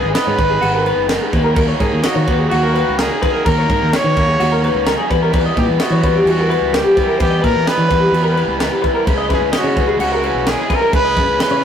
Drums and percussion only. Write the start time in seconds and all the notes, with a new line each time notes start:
0.15 snare, crash
0.38 kick, crash
0.62 crash
0.86 crash
1.09 snare, crash
1.33 kick, crash
1.56 kick, crash
1.80 kick, crash
2.04 snare, crash
2.28 kick, crash
2.51 crash
2.75 crash
2.99 snare, crash
3.23 kick, crash
3.46 kick, crash
3.70 kick, crash
3.93 snare, crash
4.17 kick, crash
4.40 crash
4.64 crash
4.86 snare, crash
5.11 kick, crash
5.33 kick, crash
5.57 kick, crash
5.80 snare, crash
6.03 kick, crash
6.27 crash
6.51 crash
6.74 snare, crash
6.97 kick, crash
7.20 kick, crash
7.44 kick, crash
7.67 snare, crash
7.90 kick, crash
8.14 crash
8.37 crash
8.60 snare, crash
8.84 kick, crash
9.07 kick, crash
9.30 kick, crash
9.53 snare, crash
9.76 kick, crash
10.00 crash
10.23 crash
10.47 snare, crash
10.70 kick, crash
10.93 kick, crash
11.17 kick, crash
11.40 snare, crash